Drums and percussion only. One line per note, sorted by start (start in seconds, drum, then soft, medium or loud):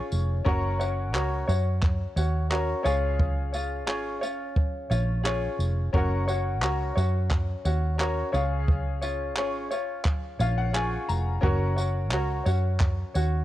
0.12 tambourine medium
0.46 kick loud
0.81 tambourine medium
1.15 clap loud
1.49 tambourine medium
1.82 kick loud
1.82 clap medium
2.17 tambourine medium
2.52 clap loud
2.85 tambourine medium
3.20 kick loud
3.54 tambourine medium
3.88 clap loud
4.23 tambourine medium
4.57 kick loud
4.92 tambourine medium
5.26 clap loud
5.60 tambourine medium
5.94 kick loud
6.28 tambourine medium
6.62 clap loud
6.97 tambourine medium
7.30 kick loud
7.30 clap medium
7.65 tambourine medium
8.00 clap loud
8.34 tambourine medium
8.68 kick loud
9.02 tambourine medium
9.37 clap loud
9.71 tambourine medium
10.05 kick loud
10.05 clap medium
10.40 tambourine medium
10.75 clap loud
11.09 tambourine medium
11.43 kick loud
11.78 tambourine medium
12.12 clap loud
12.46 tambourine medium
12.80 kick loud
12.80 clap medium
13.15 tambourine medium